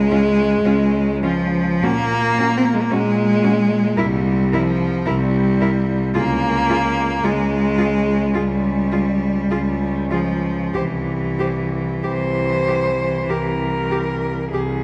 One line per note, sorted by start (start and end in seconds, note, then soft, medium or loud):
0.00 0.52 C#2 medium
0.00 1.23 G#3 loud
0.11 0.19 C#4 medium
0.11 0.20 F4 medium
0.64 1.69 C#2 medium
0.64 0.73 C#4 medium
0.64 0.74 F4 medium
1.23 1.85 F3 medium
1.23 1.31 C#4 medium
1.23 1.31 F4 medium
1.83 2.78 A#2 medium
1.83 2.59 A#3 loud
1.83 1.91 C#4 medium
1.83 1.91 F#4 medium
2.38 2.46 C#4 medium
2.38 2.47 F#4 medium
2.58 2.66 C4 medium
2.64 2.75 A#3 medium
2.74 2.83 G#3 medium
2.82 2.93 A#3 medium
2.90 3.86 A#2 medium
2.90 4.00 G#3 loud
2.90 2.98 C#4 medium
2.90 3.00 F#4 medium
3.43 3.52 C#4 medium
3.43 3.51 F#4 medium
3.97 4.95 C2 medium
3.97 4.55 G3 medium
3.97 4.06 E4 medium
3.97 4.05 A#4 medium
4.52 5.09 F3 medium
4.52 4.61 E4 medium
4.52 4.60 A#4 medium
5.06 6.03 C2 medium
5.06 6.16 G3 medium
5.06 5.14 E4 medium
5.06 5.15 A#4 medium
5.61 5.69 E4 medium
5.61 5.69 A#4 medium
6.14 7.12 C#2 medium
6.14 7.26 A#3 loud
6.14 6.22 F4 medium
6.14 6.23 G#4 medium
6.69 6.77 F4 medium
6.69 6.79 G#4 medium
7.24 8.22 C#2 medium
7.24 8.37 G#3 loud
7.24 7.32 F4 medium
7.24 7.33 G#4 medium
7.78 7.86 F4 medium
7.78 7.89 G#4 medium
8.34 9.38 C#2 medium
8.34 10.12 G3 medium
8.34 8.42 F4 medium
8.34 8.44 G#4 medium
8.91 8.99 F4 medium
8.91 9.00 G#4 soft
9.51 10.61 C#2 medium
9.51 9.59 F4 medium
9.51 9.59 G#4 medium
10.11 10.78 F3 medium
10.11 10.19 F4 soft
10.11 10.21 G#4 medium
10.74 11.90 C2 medium
10.74 14.84 E3 medium
10.74 10.82 G4 medium
10.74 10.84 C5 medium
11.39 11.47 G4 medium
11.39 11.48 C5 medium
12.03 13.15 C2 medium
12.03 12.11 G4 soft
12.03 13.31 C5 medium
12.68 12.76 G4 soft
13.29 14.39 C2 medium
13.29 13.37 G4 medium
13.29 14.52 A#4 medium
13.91 13.99 G4 medium
14.53 14.84 C2 medium
14.53 14.61 G4 soft
14.53 14.84 G#4 medium